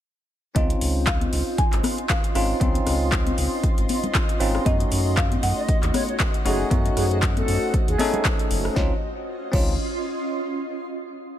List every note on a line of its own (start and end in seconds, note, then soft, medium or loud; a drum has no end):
0.55 0.74 C#2 loud
0.55 2.32 C4 medium
0.55 2.32 C#4 medium
0.55 2.33 D#4 medium
0.55 4.62 F4 medium
0.55 2.33 F4 medium
0.55 2.59 C5 medium
0.55 1.03 D#5 medium
0.55 8.72 D#5 medium
0.55 kick loud
0.55 closed hi-hat medium
0.55 high conga medium
0.70 4.66 F4 medium
0.70 closed hi-hat medium
0.78 1.27 C#2 medium
0.78 8.76 D#5 medium
0.78 open hi-hat loud
0.92 5.70 C6 medium
1.07 1.60 F5 loud
1.07 kick loud
1.07 clap loud
1.07 closed hi-hat medium
1.21 closed hi-hat medium
1.21 high conga medium
1.33 1.43 C#2 loud
1.33 open hi-hat loud
1.58 2.11 G#5 loud
1.58 kick loud
1.58 closed hi-hat medium
1.73 1.80 G#1 loud
1.73 clap soft
1.73 closed hi-hat medium
1.83 cross-stick medium
1.83 open hi-hat loud
1.83 high conga loud
1.98 closed hi-hat soft
2.10 2.34 F5 loud
2.10 kick loud
2.10 clap loud
2.10 closed hi-hat medium
2.24 closed hi-hat medium
2.35 2.54 G#1 medium
2.35 2.58 C4 medium
2.35 2.58 C#4 medium
2.35 2.58 D#4 medium
2.35 2.58 F4 medium
2.35 4.36 F5 medium
2.35 cross-stick medium
2.35 open hi-hat loud
2.60 2.79 C#2 loud
2.60 4.37 C4 medium
2.60 4.38 C#4 medium
2.60 4.38 D#4 medium
2.60 4.38 F4 medium
2.60 6.67 C6 medium
2.60 kick loud
2.60 closed hi-hat medium
2.60 high conga medium
2.75 closed hi-hat medium
2.87 3.32 C#2 medium
2.87 cross-stick medium
2.87 open hi-hat loud
3.12 kick loud
3.12 clap loud
3.12 closed hi-hat medium
3.27 closed hi-hat medium
3.27 high conga medium
3.38 3.48 C#2 loud
3.38 open hi-hat loud
3.63 kick loud
3.63 closed hi-hat medium
3.78 3.86 G#1 loud
3.78 closed hi-hat medium
3.89 open hi-hat loud
3.89 high conga medium
4.03 closed hi-hat soft
4.03 low conga medium
4.15 kick loud
4.15 clap loud
4.15 closed hi-hat medium
4.29 closed hi-hat medium
4.40 4.59 G#1 medium
4.40 4.63 C4 medium
4.40 4.63 C#4 medium
4.40 4.63 D#4 medium
4.40 4.64 F4 medium
4.40 open hi-hat loud
4.55 cross-stick medium
4.65 4.85 F#2 loud
4.65 6.42 A3 medium
4.65 8.72 A3 medium
4.65 6.43 C#4 medium
4.65 6.43 D#4 medium
4.65 8.72 F#4 medium
4.65 6.43 F#4 medium
4.65 5.19 D#5 loud
4.65 kick loud
4.65 closed hi-hat medium
4.65 high conga loud
4.73 8.76 F#4 medium
4.80 closed hi-hat medium
4.92 5.37 F#2 medium
4.92 open hi-hat loud
5.17 5.41 F5 loud
5.17 kick loud
5.17 clap loud
5.17 closed hi-hat medium
5.27 8.76 F#5 medium
5.32 closed hi-hat soft
5.32 high conga medium
5.43 5.53 F#2 loud
5.43 8.21 F#5 loud
5.43 open hi-hat loud
5.57 5.79 D#5 loud
5.69 kick loud
5.69 closed hi-hat medium
5.83 5.91 D#2 loud
5.83 clap soft
5.83 closed hi-hat medium
5.94 6.03 C#5 medium
5.94 cross-stick medium
5.94 open hi-hat loud
5.94 high conga loud
6.09 6.16 C#5 medium
6.09 closed hi-hat soft
6.20 kick loud
6.20 clap loud
6.20 closed hi-hat medium
6.34 closed hi-hat soft
6.45 6.64 F#1 medium
6.45 6.68 A3 medium
6.45 6.68 C#4 medium
6.45 6.69 D#4 medium
6.45 6.69 F#4 medium
6.45 6.68 G#4 medium
6.45 cross-stick medium
6.45 open hi-hat loud
6.70 6.90 F#2 loud
6.70 7.97 A3 medium
6.70 7.97 C#4 medium
6.70 7.97 D#4 medium
6.70 7.98 F#4 medium
6.70 8.74 C5 medium
6.70 kick loud
6.70 closed hi-hat medium
6.70 high conga medium
6.86 closed hi-hat soft
6.97 7.42 F#2 medium
6.97 7.06 G#4 medium
6.97 cross-stick medium
6.97 open hi-hat loud
7.11 7.18 G#4 medium
7.11 closed hi-hat soft
7.22 kick loud
7.22 clap loud
7.22 closed hi-hat medium
7.37 7.74 A4 loud
7.37 closed hi-hat soft
7.37 high conga medium
7.48 7.58 F#2 loud
7.48 open hi-hat loud
7.74 kick loud
7.74 closed hi-hat medium
7.88 7.96 D#2 loud
7.88 8.25 G#4 loud
7.88 closed hi-hat medium
7.98 8.73 A3 loud
7.98 8.73 C#4 medium
7.98 8.74 D#4 medium
7.98 8.74 A4 loud
7.98 open hi-hat loud
7.98 high conga medium
8.13 closed hi-hat soft
8.13 low conga medium
8.25 kick loud
8.25 clap loud
8.25 closed hi-hat medium
8.39 closed hi-hat medium
8.51 8.69 F#1 medium
8.51 open hi-hat loud
8.65 cross-stick medium
8.75 8.92 C#2 loud
8.75 8.91 C4 medium
8.75 8.92 C#4 medium
8.75 9.00 C#4 medium
8.75 10.77 C#4 medium
8.75 8.92 D#4 medium
8.75 9.00 F4 medium
8.75 8.93 F4 medium
8.75 9.00 C5 medium
8.75 8.92 C#5 medium
8.75 9.00 D#5 medium
8.75 kick loud
8.75 snare medium
8.85 10.77 F4 medium
8.93 10.77 D#5 medium
9.00 10.77 C6 medium
9.52 9.77 C#2 loud
9.52 9.72 C4 medium
9.52 9.73 C#4 medium
9.52 9.73 D#4 medium
9.52 9.74 F4 loud
9.52 9.77 C#5 medium
9.52 kick loud
9.52 crash medium